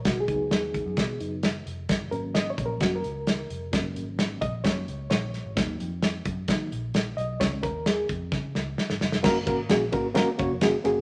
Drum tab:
CC |----------------|----------------|----------------|----------------|
RD |----------------|----------------|----------------|----------------|
HH |x-x-x-x-x-x-x-x-|x-x-x-x-x-x-x-x-|x-x-x-x-x-x-x-x-|x-x-x-x-x-x-x-x-|
SD |o---o---o---o---|o---o---o---o---|o---o---o---o-o-|o---o---o---o---|
BD |o-o---o-o-------|o-----o-o-------|o-----o-o-------|o-----o-o-------|

CC |----------------|x---------------|
RD |----------------|--x-x-x-x-x-x-x-|
HH |x-x-x-x---------|----------------|
SD |o---o---o-o-oooo|o---o---o---o-o-|
BD |o-o---o-o-------|o-o---o---o-----|